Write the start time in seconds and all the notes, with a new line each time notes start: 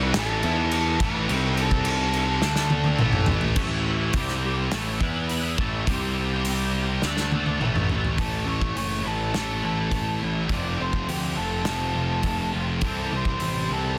Already playing: C2 C3 G3 C4
0.03 B4
0.14 A1 A2 E3 A3, snare, crash
0.19 A4
0.43 E2 E3 B3 E4, crash
0.71 crash
0.99 A1 A2 E3 A3, kick, crash
1.05 B4
1.28 C2 C3 G3 C4, crash
1.57 crash
1.61 A4
1.71 kick
1.85 crash
2.13 crash
2.42 D2 D3 A3 D4, snare
2.56 snare
2.70 high tom
2.84 high tom
2.99 A1 A2 E3 A3, mid tom
3.13 mid tom
3.26 floor tom
3.41 floor tom
3.56 A1 A2 E3 A3 C#4 E4, kick, crash
3.84 E3 A3 C#4 E4
4.00 A3 C#4 E4
4.13 C2 C3 G3 C4, kick, open hi-hat
4.18 G4
4.28 snare
4.42 C3 G3 C4 G4
4.72 A1 A2 E3 A3 C#4 E4 A4, snare, open hi-hat
4.85 C#4 E4 A4
4.99 E2 E3 B3 E4 B4, kick
5.14 B3 E4 B4
5.28 E3 B3 E4 B4, open hi-hat
5.58 A1 A2 E3 A3 C#4 E4 A4, kick
5.72 C#4 E4 A4
5.87 C2 C3 G3 C4 G4, kick, open hi-hat
6.18 C3 G3 C4 G4
6.32 G3 C4 G4
6.45 C3 G3 C4, open hi-hat
6.50 G4
6.75 C3 G3 C4 G4
7.02 D2 D3 A3 D4, snare
7.06 D4 A4
7.17 D4 A4, snare
7.21 A3
7.32 D3 A3 D4, high tom
7.36 A4
7.46 A3 D4 A4, high tom
7.60 A1 A2 E3 A3, mid tom
7.64 C#4 A4
7.75 mid tom
7.89 E3 A3, floor tom
7.94 C#4 A4
8.04 A3 C#4 A4, floor tom
8.18 A1 A2 E3 A3 C#4 E4 A4, kick, open hi-hat
8.46 A1 A3 C#5
8.62 kick
8.75 F#1 C#4 C#5, open hi-hat
9.03 A1 A2 E3 A3 C#4 E4 A4
9.33 A1 A2 E3 A3 A4, snare, open hi-hat
9.62 A1 E4 A4
9.91 A1 A3, kick, open hi-hat
10.19 E4
10.23 A1
10.48 F1 F2 C3 F3 A3 C4 F4, kick, open hi-hat
10.53 F3 D5
10.78 F1 A3 C5
10.93 kick
11.07 D2 C4 G4, open hi-hat
11.35 F1 F3 A3 C4 F4 A4
11.65 F1 F2 C3 F3 A3, snare, open hi-hat
11.94 F1 F4
12.23 F1 A3, kick, open hi-hat
12.53 F1 F4
12.81 C2 C3 E3 G3 E4 A4, kick, open hi-hat
12.87 C4
13.11 C2 G3
13.16 C5
13.25 kick
13.38 A1 C4, open hi-hat
13.43 C5
13.69 C2 C3 E3 G3 C4 E4 A4